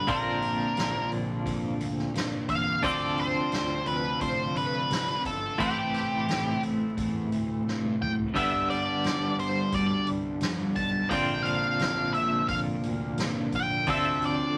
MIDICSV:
0, 0, Header, 1, 6, 480
1, 0, Start_track
1, 0, Tempo, 689655
1, 63, Time_signature, 4, 2, 24, 8
1, 10146, End_track
2, 0, Start_track
2, 0, Title_t, "Lead electric guitar"
2, 0, Program_c, 0, 29
2, 0, Note_on_c, 0, 71, 69
2, 72, Note_off_c, 0, 71, 0
2, 77, Note_on_c, 0, 70, 77
2, 760, Note_off_c, 0, 70, 0
2, 1739, Note_on_c, 0, 77, 90
2, 1975, Note_off_c, 0, 77, 0
2, 1978, Note_on_c, 0, 74, 107
2, 2221, Note_on_c, 0, 72, 87
2, 2224, Note_off_c, 0, 74, 0
2, 2693, Note_off_c, 0, 72, 0
2, 2696, Note_on_c, 0, 71, 81
2, 2932, Note_off_c, 0, 71, 0
2, 2935, Note_on_c, 0, 72, 80
2, 3179, Note_off_c, 0, 72, 0
2, 3182, Note_on_c, 0, 71, 82
2, 3629, Note_off_c, 0, 71, 0
2, 3662, Note_on_c, 0, 69, 69
2, 3904, Note_off_c, 0, 69, 0
2, 3915, Note_on_c, 0, 67, 71
2, 4595, Note_off_c, 0, 67, 0
2, 5582, Note_on_c, 0, 79, 86
2, 5645, Note_off_c, 0, 79, 0
2, 5815, Note_on_c, 0, 76, 96
2, 6052, Note_off_c, 0, 76, 0
2, 6054, Note_on_c, 0, 74, 84
2, 6505, Note_off_c, 0, 74, 0
2, 6540, Note_on_c, 0, 72, 69
2, 6783, Note_off_c, 0, 72, 0
2, 6783, Note_on_c, 0, 74, 66
2, 7001, Note_off_c, 0, 74, 0
2, 7488, Note_on_c, 0, 81, 87
2, 7722, Note_off_c, 0, 81, 0
2, 7725, Note_on_c, 0, 79, 101
2, 7953, Note_on_c, 0, 77, 81
2, 7977, Note_off_c, 0, 79, 0
2, 8446, Note_off_c, 0, 77, 0
2, 8448, Note_on_c, 0, 76, 71
2, 8687, Note_off_c, 0, 76, 0
2, 8690, Note_on_c, 0, 77, 70
2, 8756, Note_off_c, 0, 77, 0
2, 9436, Note_on_c, 0, 79, 85
2, 9676, Note_off_c, 0, 79, 0
2, 9677, Note_on_c, 0, 76, 102
2, 9917, Note_off_c, 0, 76, 0
2, 9921, Note_on_c, 0, 74, 93
2, 10146, Note_off_c, 0, 74, 0
2, 10146, End_track
3, 0, Start_track
3, 0, Title_t, "String machine"
3, 0, Program_c, 1, 50
3, 0, Note_on_c, 1, 62, 72
3, 53, Note_on_c, 1, 60, 69
3, 56, Note_on_c, 1, 58, 76
3, 57, Note_on_c, 1, 70, 88
3, 58, Note_on_c, 1, 65, 72
3, 1945, Note_off_c, 1, 62, 0
3, 1954, Note_off_c, 1, 58, 0
3, 1955, Note_off_c, 1, 65, 0
3, 1955, Note_off_c, 1, 70, 0
3, 1970, Note_on_c, 1, 69, 85
3, 1972, Note_on_c, 1, 57, 78
3, 1973, Note_on_c, 1, 65, 73
3, 1979, Note_on_c, 1, 62, 71
3, 3871, Note_off_c, 1, 57, 0
3, 3872, Note_off_c, 1, 65, 0
3, 3874, Note_on_c, 1, 64, 68
3, 3875, Note_off_c, 1, 62, 0
3, 3888, Note_on_c, 1, 57, 79
3, 5779, Note_off_c, 1, 60, 0
3, 5780, Note_off_c, 1, 69, 0
3, 5782, Note_off_c, 1, 64, 0
3, 5790, Note_off_c, 1, 57, 0
3, 5798, Note_on_c, 1, 62, 68
3, 5801, Note_on_c, 1, 67, 76
3, 5803, Note_on_c, 1, 83, 88
3, 5805, Note_on_c, 1, 55, 77
3, 7709, Note_off_c, 1, 67, 0
3, 7710, Note_off_c, 1, 83, 0
3, 7711, Note_off_c, 1, 55, 0
3, 7732, Note_on_c, 1, 58, 74
3, 7732, Note_on_c, 1, 60, 74
3, 7735, Note_on_c, 1, 65, 71
3, 7736, Note_on_c, 1, 70, 88
3, 9626, Note_off_c, 1, 62, 0
3, 9641, Note_off_c, 1, 58, 0
3, 9643, Note_off_c, 1, 70, 0
3, 9672, Note_on_c, 1, 57, 84
3, 9673, Note_on_c, 1, 69, 80
3, 9679, Note_on_c, 1, 62, 71
3, 10146, Note_off_c, 1, 57, 0
3, 10146, Note_off_c, 1, 60, 0
3, 10146, Note_off_c, 1, 62, 0
3, 10146, Note_off_c, 1, 65, 0
3, 10146, Note_off_c, 1, 69, 0
3, 10146, End_track
4, 0, Start_track
4, 0, Title_t, "Clean electric guitar"
4, 0, Program_c, 2, 27
4, 50, Note_on_c, 2, 46, 73
4, 57, Note_on_c, 2, 50, 79
4, 57, Note_on_c, 2, 53, 81
4, 67, Note_on_c, 2, 60, 84
4, 69, Note_on_c, 2, 62, 85
4, 1956, Note_off_c, 2, 46, 0
4, 1958, Note_off_c, 2, 50, 0
4, 1960, Note_off_c, 2, 53, 0
4, 1966, Note_off_c, 2, 62, 0
4, 1967, Note_on_c, 2, 50, 79
4, 1976, Note_off_c, 2, 60, 0
4, 1976, Note_on_c, 2, 53, 81
4, 1978, Note_on_c, 2, 60, 88
4, 1981, Note_on_c, 2, 62, 89
4, 1988, Note_on_c, 2, 69, 78
4, 3873, Note_off_c, 2, 50, 0
4, 3878, Note_off_c, 2, 53, 0
4, 3879, Note_off_c, 2, 60, 0
4, 3881, Note_off_c, 2, 62, 0
4, 3884, Note_off_c, 2, 69, 0
4, 3885, Note_on_c, 2, 45, 75
4, 3888, Note_on_c, 2, 52, 83
4, 3897, Note_on_c, 2, 57, 85
4, 3898, Note_on_c, 2, 60, 88
4, 3900, Note_on_c, 2, 64, 83
4, 3909, Note_on_c, 2, 71, 80
4, 5793, Note_off_c, 2, 45, 0
4, 5794, Note_off_c, 2, 52, 0
4, 5799, Note_off_c, 2, 57, 0
4, 5800, Note_off_c, 2, 60, 0
4, 5800, Note_off_c, 2, 64, 0
4, 5805, Note_off_c, 2, 71, 0
4, 5805, Note_on_c, 2, 43, 77
4, 5813, Note_on_c, 2, 50, 71
4, 5817, Note_on_c, 2, 55, 80
4, 5821, Note_on_c, 2, 59, 88
4, 5826, Note_on_c, 2, 62, 92
4, 7716, Note_off_c, 2, 43, 0
4, 7720, Note_off_c, 2, 50, 0
4, 7722, Note_off_c, 2, 55, 0
4, 7724, Note_off_c, 2, 59, 0
4, 7726, Note_on_c, 2, 46, 78
4, 7735, Note_on_c, 2, 50, 90
4, 7738, Note_on_c, 2, 53, 82
4, 7743, Note_off_c, 2, 62, 0
4, 7743, Note_on_c, 2, 60, 89
4, 7746, Note_on_c, 2, 62, 92
4, 9642, Note_off_c, 2, 46, 0
4, 9647, Note_off_c, 2, 50, 0
4, 9648, Note_off_c, 2, 53, 0
4, 9653, Note_off_c, 2, 62, 0
4, 9655, Note_on_c, 2, 50, 89
4, 9660, Note_on_c, 2, 53, 78
4, 9663, Note_off_c, 2, 60, 0
4, 9666, Note_on_c, 2, 60, 87
4, 9668, Note_on_c, 2, 62, 92
4, 9674, Note_on_c, 2, 69, 88
4, 10146, Note_off_c, 2, 50, 0
4, 10146, Note_off_c, 2, 53, 0
4, 10146, Note_off_c, 2, 60, 0
4, 10146, Note_off_c, 2, 62, 0
4, 10146, Note_off_c, 2, 69, 0
4, 10146, End_track
5, 0, Start_track
5, 0, Title_t, "Picked electric bass"
5, 0, Program_c, 3, 34
5, 53, Note_on_c, 3, 34, 90
5, 432, Note_off_c, 3, 34, 0
5, 539, Note_on_c, 3, 34, 78
5, 727, Note_off_c, 3, 34, 0
5, 776, Note_on_c, 3, 34, 79
5, 965, Note_off_c, 3, 34, 0
5, 1012, Note_on_c, 3, 41, 77
5, 1203, Note_off_c, 3, 41, 0
5, 1253, Note_on_c, 3, 38, 87
5, 1443, Note_off_c, 3, 38, 0
5, 1490, Note_on_c, 3, 43, 87
5, 1680, Note_off_c, 3, 43, 0
5, 1732, Note_on_c, 3, 40, 80
5, 1921, Note_off_c, 3, 40, 0
5, 1970, Note_on_c, 3, 38, 85
5, 2348, Note_off_c, 3, 38, 0
5, 2448, Note_on_c, 3, 38, 80
5, 2639, Note_off_c, 3, 38, 0
5, 2686, Note_on_c, 3, 38, 84
5, 2877, Note_off_c, 3, 38, 0
5, 2928, Note_on_c, 3, 45, 82
5, 3118, Note_off_c, 3, 45, 0
5, 3167, Note_on_c, 3, 43, 81
5, 3358, Note_off_c, 3, 43, 0
5, 3410, Note_on_c, 3, 48, 83
5, 3599, Note_off_c, 3, 48, 0
5, 3654, Note_on_c, 3, 31, 74
5, 3841, Note_off_c, 3, 31, 0
5, 3889, Note_on_c, 3, 33, 85
5, 4266, Note_off_c, 3, 33, 0
5, 4365, Note_on_c, 3, 33, 80
5, 4556, Note_off_c, 3, 33, 0
5, 4609, Note_on_c, 3, 33, 79
5, 4798, Note_off_c, 3, 33, 0
5, 4855, Note_on_c, 3, 40, 75
5, 5041, Note_off_c, 3, 40, 0
5, 5097, Note_on_c, 3, 38, 85
5, 5283, Note_off_c, 3, 38, 0
5, 5341, Note_on_c, 3, 43, 82
5, 5525, Note_off_c, 3, 43, 0
5, 5578, Note_on_c, 3, 30, 80
5, 5764, Note_off_c, 3, 30, 0
5, 5813, Note_on_c, 3, 31, 81
5, 6189, Note_off_c, 3, 31, 0
5, 6296, Note_on_c, 3, 31, 81
5, 6482, Note_off_c, 3, 31, 0
5, 6532, Note_on_c, 3, 31, 77
5, 6720, Note_off_c, 3, 31, 0
5, 6771, Note_on_c, 3, 38, 73
5, 6959, Note_off_c, 3, 38, 0
5, 7019, Note_on_c, 3, 36, 78
5, 7205, Note_off_c, 3, 36, 0
5, 7251, Note_on_c, 3, 41, 84
5, 7440, Note_off_c, 3, 41, 0
5, 7490, Note_on_c, 3, 35, 78
5, 7679, Note_off_c, 3, 35, 0
5, 7729, Note_on_c, 3, 34, 92
5, 8108, Note_off_c, 3, 34, 0
5, 8218, Note_on_c, 3, 34, 82
5, 8405, Note_off_c, 3, 34, 0
5, 8458, Note_on_c, 3, 34, 76
5, 8646, Note_off_c, 3, 34, 0
5, 8689, Note_on_c, 3, 41, 80
5, 8880, Note_off_c, 3, 41, 0
5, 8943, Note_on_c, 3, 38, 84
5, 9130, Note_off_c, 3, 38, 0
5, 9177, Note_on_c, 3, 43, 91
5, 9366, Note_off_c, 3, 43, 0
5, 9413, Note_on_c, 3, 41, 79
5, 9657, Note_off_c, 3, 41, 0
5, 9657, Note_on_c, 3, 38, 88
5, 10037, Note_off_c, 3, 38, 0
5, 10146, End_track
6, 0, Start_track
6, 0, Title_t, "Drums"
6, 55, Note_on_c, 9, 46, 55
6, 56, Note_on_c, 9, 36, 100
6, 125, Note_off_c, 9, 46, 0
6, 126, Note_off_c, 9, 36, 0
6, 293, Note_on_c, 9, 46, 42
6, 362, Note_off_c, 9, 46, 0
6, 536, Note_on_c, 9, 46, 56
6, 543, Note_on_c, 9, 38, 99
6, 605, Note_off_c, 9, 46, 0
6, 612, Note_off_c, 9, 38, 0
6, 777, Note_on_c, 9, 46, 44
6, 847, Note_off_c, 9, 46, 0
6, 1014, Note_on_c, 9, 36, 97
6, 1018, Note_on_c, 9, 46, 61
6, 1084, Note_off_c, 9, 36, 0
6, 1088, Note_off_c, 9, 46, 0
6, 1256, Note_on_c, 9, 46, 50
6, 1326, Note_off_c, 9, 46, 0
6, 1382, Note_on_c, 9, 38, 30
6, 1452, Note_off_c, 9, 38, 0
6, 1499, Note_on_c, 9, 46, 62
6, 1506, Note_on_c, 9, 38, 98
6, 1568, Note_off_c, 9, 46, 0
6, 1575, Note_off_c, 9, 38, 0
6, 1730, Note_on_c, 9, 46, 53
6, 1731, Note_on_c, 9, 36, 78
6, 1800, Note_off_c, 9, 46, 0
6, 1801, Note_off_c, 9, 36, 0
6, 1970, Note_on_c, 9, 46, 66
6, 1971, Note_on_c, 9, 36, 103
6, 2040, Note_off_c, 9, 36, 0
6, 2040, Note_off_c, 9, 46, 0
6, 2210, Note_on_c, 9, 46, 46
6, 2280, Note_off_c, 9, 46, 0
6, 2449, Note_on_c, 9, 46, 60
6, 2456, Note_on_c, 9, 38, 90
6, 2519, Note_off_c, 9, 46, 0
6, 2526, Note_off_c, 9, 38, 0
6, 2687, Note_on_c, 9, 46, 45
6, 2757, Note_off_c, 9, 46, 0
6, 2929, Note_on_c, 9, 36, 92
6, 2930, Note_on_c, 9, 46, 59
6, 2998, Note_off_c, 9, 36, 0
6, 2999, Note_off_c, 9, 46, 0
6, 3174, Note_on_c, 9, 46, 48
6, 3244, Note_off_c, 9, 46, 0
6, 3414, Note_on_c, 9, 46, 59
6, 3421, Note_on_c, 9, 38, 97
6, 3484, Note_off_c, 9, 46, 0
6, 3491, Note_off_c, 9, 38, 0
6, 3652, Note_on_c, 9, 36, 82
6, 3655, Note_on_c, 9, 46, 47
6, 3722, Note_off_c, 9, 36, 0
6, 3725, Note_off_c, 9, 46, 0
6, 3892, Note_on_c, 9, 36, 97
6, 3897, Note_on_c, 9, 46, 62
6, 3962, Note_off_c, 9, 36, 0
6, 3966, Note_off_c, 9, 46, 0
6, 4135, Note_on_c, 9, 46, 43
6, 4205, Note_off_c, 9, 46, 0
6, 4374, Note_on_c, 9, 46, 60
6, 4381, Note_on_c, 9, 38, 96
6, 4444, Note_off_c, 9, 46, 0
6, 4451, Note_off_c, 9, 38, 0
6, 4615, Note_on_c, 9, 46, 44
6, 4685, Note_off_c, 9, 46, 0
6, 4852, Note_on_c, 9, 36, 97
6, 4854, Note_on_c, 9, 46, 58
6, 4922, Note_off_c, 9, 36, 0
6, 4924, Note_off_c, 9, 46, 0
6, 5095, Note_on_c, 9, 46, 46
6, 5164, Note_off_c, 9, 46, 0
6, 5343, Note_on_c, 9, 38, 56
6, 5413, Note_off_c, 9, 38, 0
6, 5455, Note_on_c, 9, 48, 55
6, 5525, Note_off_c, 9, 48, 0
6, 5579, Note_on_c, 9, 45, 77
6, 5648, Note_off_c, 9, 45, 0
6, 5698, Note_on_c, 9, 43, 74
6, 5768, Note_off_c, 9, 43, 0
6, 5815, Note_on_c, 9, 36, 100
6, 5818, Note_on_c, 9, 46, 65
6, 5884, Note_off_c, 9, 36, 0
6, 5887, Note_off_c, 9, 46, 0
6, 6058, Note_on_c, 9, 46, 48
6, 6127, Note_off_c, 9, 46, 0
6, 6293, Note_on_c, 9, 46, 61
6, 6299, Note_on_c, 9, 38, 97
6, 6362, Note_off_c, 9, 46, 0
6, 6369, Note_off_c, 9, 38, 0
6, 6536, Note_on_c, 9, 46, 45
6, 6606, Note_off_c, 9, 46, 0
6, 6767, Note_on_c, 9, 46, 65
6, 6769, Note_on_c, 9, 36, 105
6, 6837, Note_off_c, 9, 46, 0
6, 6839, Note_off_c, 9, 36, 0
6, 7007, Note_on_c, 9, 46, 50
6, 7076, Note_off_c, 9, 46, 0
6, 7242, Note_on_c, 9, 46, 61
6, 7249, Note_on_c, 9, 38, 99
6, 7312, Note_off_c, 9, 46, 0
6, 7319, Note_off_c, 9, 38, 0
6, 7486, Note_on_c, 9, 46, 48
6, 7488, Note_on_c, 9, 36, 83
6, 7555, Note_off_c, 9, 46, 0
6, 7557, Note_off_c, 9, 36, 0
6, 7729, Note_on_c, 9, 36, 99
6, 7730, Note_on_c, 9, 46, 65
6, 7798, Note_off_c, 9, 36, 0
6, 7799, Note_off_c, 9, 46, 0
6, 7971, Note_on_c, 9, 46, 41
6, 8041, Note_off_c, 9, 46, 0
6, 8209, Note_on_c, 9, 46, 60
6, 8216, Note_on_c, 9, 38, 100
6, 8278, Note_off_c, 9, 46, 0
6, 8285, Note_off_c, 9, 38, 0
6, 8451, Note_on_c, 9, 46, 43
6, 8521, Note_off_c, 9, 46, 0
6, 8688, Note_on_c, 9, 46, 57
6, 8690, Note_on_c, 9, 36, 104
6, 8758, Note_off_c, 9, 46, 0
6, 8760, Note_off_c, 9, 36, 0
6, 8932, Note_on_c, 9, 46, 47
6, 9002, Note_off_c, 9, 46, 0
6, 9171, Note_on_c, 9, 46, 62
6, 9178, Note_on_c, 9, 38, 100
6, 9240, Note_off_c, 9, 46, 0
6, 9247, Note_off_c, 9, 38, 0
6, 9412, Note_on_c, 9, 46, 48
6, 9415, Note_on_c, 9, 36, 84
6, 9481, Note_off_c, 9, 46, 0
6, 9485, Note_off_c, 9, 36, 0
6, 9651, Note_on_c, 9, 46, 61
6, 9656, Note_on_c, 9, 36, 101
6, 9720, Note_off_c, 9, 46, 0
6, 9726, Note_off_c, 9, 36, 0
6, 9896, Note_on_c, 9, 46, 46
6, 9965, Note_off_c, 9, 46, 0
6, 10146, End_track
0, 0, End_of_file